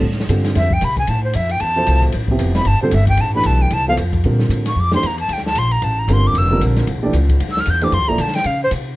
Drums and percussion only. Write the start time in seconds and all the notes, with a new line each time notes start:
0.12 snare
0.20 snare
0.29 hi-hat pedal, ride
0.44 snare, ride
0.55 snare, ride
0.71 kick
0.81 hi-hat pedal, ride
0.97 kick, ride
1.07 ride
1.33 hi-hat pedal, ride
1.49 ride
1.60 ride
1.87 hi-hat pedal, ride
2.02 kick, ride
2.12 ride
2.28 kick
2.39 hi-hat pedal, ride
2.55 snare, ride
2.65 ride
2.91 hi-hat pedal, ride
3.07 kick, ride
3.17 ride
3.43 hi-hat pedal, ride
3.70 ride
3.97 hi-hat pedal, ride
4.13 kick, ride
4.24 ride
4.39 snare
4.50 hi-hat pedal, ride
4.66 snare, ride
4.92 snare
5.03 hi-hat pedal, ride
5.18 ride
5.29 ride
5.38 snare
5.46 snare
5.55 hi-hat pedal, ride
5.71 ride
5.82 ride
6.08 hi-hat pedal, ride
6.35 ride
6.61 hi-hat pedal, ride
6.76 snare, ride
6.87 ride
7.13 hi-hat pedal, ride
7.29 kick, ride
7.40 ride
7.48 snare
7.57 snare
7.66 hi-hat pedal, ride
7.81 ride
7.92 ride
8.18 hi-hat pedal, ride
8.28 snare
8.33 snare, ride
8.44 ride
8.71 hi-hat pedal, ride